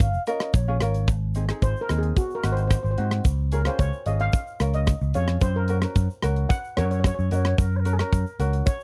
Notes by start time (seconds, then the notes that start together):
Already playing: G#1
0.00 F5, kick, closed hi-hat
0.14 shaker
0.26 C#4 F4 A#4 D#5, closed hi-hat, shaker
0.40 cross-stick, closed hi-hat, shaker
0.53 A#1 C#5, kick, closed hi-hat, shaker
0.68 C#4 F4 G#4
0.80 G#1 C#4 F4 A#4, cross-stick, closed hi-hat, shaker
0.94 closed hi-hat, shaker
1.07 G#1, kick, closed hi-hat, shaker
1.35 C4 D#4 G#4, closed hi-hat, shaker
1.49 C4 D#4 G#4, cross-stick, closed hi-hat, shaker
1.62 G#1 C5, kick, closed hi-hat, shaker
1.77 shaker
1.81 A#4
1.89 D#2 C4 D#4 G#4, cross-stick, closed hi-hat, shaker
1.98 G#4
2.03 closed hi-hat
2.16 F#4, kick, closed hi-hat, shaker
2.31 shaker
2.35 A#4
2.44 G#1 C4 D#4 F#4, cross-stick, closed hi-hat, shaker
2.52 C5
2.57 C5, closed hi-hat, shaker
2.67 C5, kick, cross-stick, closed hi-hat, shaker
2.75 C5
2.83 G#1 C5, shaker
2.91 C5
2.98 G#2 C4 D#4 F#4, closed hi-hat
3.11 cross-stick, closed hi-hat
3.24 C#2, kick, closed hi-hat, shaker
3.52 C#4 F4 G#4 A#4, closed hi-hat, shaker
3.65 C#4 F4 G#4 C5, cross-stick, closed hi-hat, shaker
3.79 C#2 C#5, kick, closed hi-hat, shaker
3.93 shaker
4.06 G#1 C#4 F4 G#4 D#5, closed hi-hat, shaker
4.20 F5, closed hi-hat
4.33 kick, closed hi-hat, shaker
4.47 shaker
4.60 C#2 C#4 F4 A#4, cross-stick, closed hi-hat, shaker
4.74 D#5, closed hi-hat, shaker
4.87 kick, cross-stick, closed hi-hat, shaker
5.01 C#2, shaker
5.14 F2 C#4 F4 G#4 C#5, closed hi-hat, shaker
5.28 cross-stick, closed hi-hat
5.41 F#2 C5, kick, closed hi-hat, shaker
5.56 A#4
5.68 C#4 F#4 A#4, closed hi-hat, shaker
5.82 C#4 F#4 A#4, cross-stick, closed hi-hat, shaker
5.95 F#2, kick, closed hi-hat, shaker
6.10 shaker
6.22 C#2 C#4 F#4 A#4, cross-stick, closed hi-hat, shaker
6.36 closed hi-hat
6.49 F#5, kick, closed hi-hat, shaker
6.64 shaker
6.77 F#2 C#4 F#4 A#4 C#5, cross-stick, closed hi-hat, shaker
6.85 C#5
6.91 C#5, closed hi-hat, shaker
7.00 C#5
7.04 C#5, kick, cross-stick, closed hi-hat, shaker
7.14 C#5
7.19 F#2, shaker
7.30 F#2 C#4 F#4 A#4 D#5, closed hi-hat, shaker
7.35 C#5
7.45 cross-stick, closed hi-hat
7.58 F#2 A#4, kick, closed hi-hat, shaker
7.75 A#4 C#5
7.85 C#4 F#4 A#4, closed hi-hat, shaker
7.92 G#4 A#4
7.99 C#4 F#4 A#4, cross-stick, closed hi-hat, shaker
8.13 F#2, kick, closed hi-hat, shaker
8.26 shaker
8.39 C#2 C#4 F#4 A#4, closed hi-hat, shaker
8.53 closed hi-hat, shaker
8.66 C#5, kick, closed hi-hat, shaker
8.81 shaker